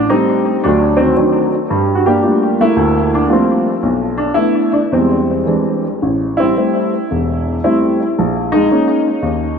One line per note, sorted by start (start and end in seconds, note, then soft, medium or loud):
0.10 0.60 G3 medium
0.10 0.48 A3 soft
0.10 0.59 C4 medium
0.10 0.64 D#4 medium
0.64 1.10 D2 medium
0.64 0.98 F#3 medium
0.64 1.65 A3 medium
0.64 0.96 D4 medium
0.97 1.65 D#3 soft
0.97 1.15 F#3 medium
0.97 1.15 C4 medium
1.17 1.53 F#3 medium
1.17 1.53 C4 soft
1.17 1.53 D4 soft
1.17 1.53 D#4 medium
1.70 2.16 G2 medium
1.70 2.16 G3 medium
1.95 2.04 F#4 medium
2.06 2.22 A#3 medium
2.06 3.08 D4 medium
2.06 2.60 G4 medium
2.23 2.60 G3 medium
2.23 2.59 A3 soft
2.23 2.60 A#3 soft
2.23 2.60 F4 medium
2.61 3.27 A3 medium
2.61 3.28 A#3 medium
2.61 3.09 E4 medium
2.76 3.23 D2 medium
3.14 3.31 D4 medium
3.28 3.66 G3 medium
3.28 3.31 A3 soft
3.28 3.81 A3 soft
3.28 3.67 A#3 soft
3.28 3.67 F4 medium
3.33 3.81 F3 soft
3.33 3.72 C4 medium
3.83 4.29 B1 medium
4.18 4.35 D4 medium
4.34 4.75 A3 soft
4.34 4.75 B3 soft
4.34 4.72 D4 soft
4.34 4.69 E4 medium
4.73 4.78 D4 medium
4.92 5.40 E2 medium
4.92 6.00 G3 medium
4.92 5.46 G#3 soft
4.92 5.46 C4 medium
5.46 5.85 E3 soft
5.46 5.86 G#3 soft
5.46 5.86 C4 soft
5.46 5.86 D4 medium
6.02 6.49 A1 medium
6.37 6.55 G3 medium
6.37 6.56 C4 medium
6.37 7.63 E4 medium
6.56 6.94 G3 soft
6.56 6.94 A3 soft
6.56 6.95 C4 medium
7.11 7.57 E1 medium
7.64 8.01 G3 soft
7.64 8.01 A3 soft
7.64 8.01 C4 medium
7.64 8.05 E4 medium
8.19 8.64 A#1 medium
8.52 8.69 G#3 medium
8.52 9.59 D#4 loud
8.71 9.07 G#3 soft
8.71 9.07 A#3 soft
8.71 9.08 C#4 medium
9.22 9.59 D#2 medium